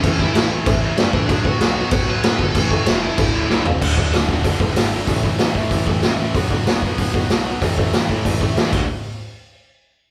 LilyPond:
<<
  \new Staff \with { instrumentName = "Lead electric guitar" } { \time 4/4 \key d \major \tempo 4 = 190 cis'8 e'4 r2 d'8 | d'8 fis'4. fis'8 b'4 a'8~ | a'16 fis'8. e'2~ e'8 r8 | r1 |
r1 | r1 | r1 | r1 | }
  \new Staff \with { instrumentName = "Distorted electric guitar" } { \clef bass \time 4/4 \key d \major <a, e a>8 <a, e a>8 <a, e a>8 <a, e a>8 <a, e a>8 <a, e a>8 <a, e a>8 <a, e a>8 | <b, fis b>8 <b, fis b>8 <b, fis b>8 <b, fis b>8 <b, fis b>8 <b, fis b>8 <b, fis b>8 <b, fis b>8 | <a, e a>8 <a, e a>8 <a, e a>8 <a, e a>8 <d, a, d>8 <d, a, d>8 <d, a, d>8 <d, a, d>8 | <d, a, d>8 <d, a, d>8 <d, a, d>8 <d, a, d>8 <d, a, d>8 <d, a, d>8 <d, a, d>8 <d, a, d>8 |
<a, e a>8 <a, e a>8 <a, e a>8 <a, e a>8 <a, e a>8 <a, e a>8 <a, e a>8 <a, e a>8 | <b, fis b>8 <b, fis b>8 <b, fis b>8 <b, fis b>8 <b, fis b>8 <b, fis b>8 <b, fis b>8 <b, fis b>8 | <a, e a>8 <a, e a>8 <a, e a>8 <a, e a>8 <a, e a>8 <a, e a>8 <a, e a>8 <d, a, d>8 | r1 | }
  \new Staff \with { instrumentName = "Distorted electric guitar" } { \clef bass \time 4/4 \key d \major <a, e a>8 <a, e a>8 <a, e a>8 <a, e a>8 <a, e a>8 <a, e a>8 <a, e a>8 <a, e a>8 | <b, fis b>8 <b, fis b>8 <b, fis b>8 <b, fis b>8 <b, fis b>8 <b, fis b>8 <b, fis b>8 <b, fis b>8 | <a, e a>8 <a, e a>8 <a, e a>8 <a, e a>8 <d, a, d>8 <d, a, d>8 <d, a, d>8 <d, a, d>8 | <d, a, d>8 <d, a, d>8 <d, a, d>8 <d, a, d>8 <d, a, d>8 <d, a, d>8 <d, a, d>8 <d, a, d>8 |
<a, e a>8 <a, e a>8 <a, e a>8 <a, e a>8 <a, e a>8 <a, e a>8 <a, e a>8 <a, e a>8 | <b, fis b>8 <b, fis b>8 <b, fis b>8 <b, fis b>8 <b, fis b>8 <b, fis b>8 <b, fis b>8 <b, fis b>8 | <a, e a>8 <a, e a>8 <a, e a>8 <a, e a>8 <a, e a>8 <a, e a>8 <a, e a>8 <d, a, d>8 | r1 | }
  \new Staff \with { instrumentName = "Picked electric bass" } { \clef bass \time 4/4 \key d \major a,,4 a,,4 a,,8 a,,8 g,8 a,,8 | b,,4 b,,4 b,,8 b,,8 a,8 g,,8 | a,,4 e,,4 d,,8 d,,8 b,,8 d,,8 | d,,8 d,,8 d,,8 d,,8 d,,8 d,,8 gis,,4 |
a,,8 a,,8 a,,8 a,8 a,,8 a,,8 a,,8 a,,8 | b,,8 b,,8 b,,8 b,,8 b,,8 b,,8 b,,4 | a,,8 a,,8 a,,8 a,8 a,,8 a,,8 a,,8 d,,8 | r1 | }
  \new DrumStaff \with { instrumentName = "Drums" } \drummode { \time 4/4 <cymc bd>8 bd8 <cymc sn>4 <cymc bd>4 <cymc sn>8 bd8 | <cymc bd>8 bd8 <cymc sn>4 <cymc bd>4 <cymc sn>8 bd8 | <cymc bd>8 bd8 <cymc sn>4 <cymc bd>4 sn8 tomfh8 | <cymc bd>8 bd8 <hho sn>8 bd8 <hho bd>8 bd8 <hho sn>4 |
<hho bd>8 bd8 <hho sn>8 bd8 <hho bd>8 bd8 <hho sn>4 | <hho bd>8 bd8 <hho sn>8 bd8 <hho bd>8 bd8 <hho sn>4 | <hho bd>8 bd8 <hho sn>8 bd8 <hho bd>8 bd8 <hho sn>8 <cymc bd>8 | r4 r4 r4 r4 | }
>>